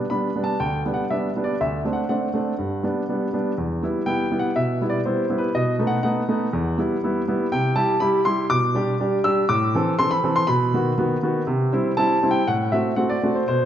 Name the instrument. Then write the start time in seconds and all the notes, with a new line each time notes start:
grand piano
0.10 G3 B3 D4 B5
0.36 G3 B3 D4
0.44 A5
0.60 D2 G5
0.85 G3 B3 D4
0.94 F#5
1.10 G3 B3 D4 E5
1.36 G3 B3 D4
1.44 D5
1.61 D2 E5
1.85 A3 C4 D4
1.93 F#5
2.09 A3 C4 D4 F#5
2.34 A3 C4 D4
2.58 G2
2.83 G3 B3 D4
3.09 G3 B3 D4
3.33 G3 B3 D4
3.58 E2
3.83 G3 B3 E4
4.06 G3 B3 E4 G5
4.31 G3 B3 E4
4.39 F#5
4.56 B2 E5
4.81 G3 B3 E4
4.89 D5
5.05 G3 B3 E4 C5
5.29 G3 B3 E4
5.38 B4
5.55 B2 D#5
5.79 A3 B3 D#4
5.87 F#5
6.03 A3 B3 D#4 F#5
6.28 A3 B3 D#4
6.53 E2
6.78 G3 B3 E4
7.04 G3 B3 E4
7.28 G3 B3 E4
7.52 C3 G5
7.76 G3 E4 G4 A5
8.00 G3 E4 G4 B5
8.25 G3 E4 G4 C6
8.50 B2 D6
8.75 G3 D4 G4
9.00 G3 D4 G4
9.24 G3 D4 G4 E6
9.49 A2 D6
9.75 E3 C4 A4
9.99 E3 C4 A4 C6
10.11 B5
10.24 E3 C4 A4
10.36 C6
10.47 B2 B5
10.74 D#3 B3 F#4
10.97 D#3 B3 F#4
11.23 D#3 B3 F#4
11.47 C3
11.73 G3 C4 E4
11.97 G3 C4 E4 A5
12.23 G3 C4 E4
12.31 G5
12.48 A2 F#5
12.72 A3 C4 F#4 E5
12.96 A3 C4 F#4 F#5
13.10 D5
13.23 A3 C4 F#4
13.35 C5
13.48 B2 C5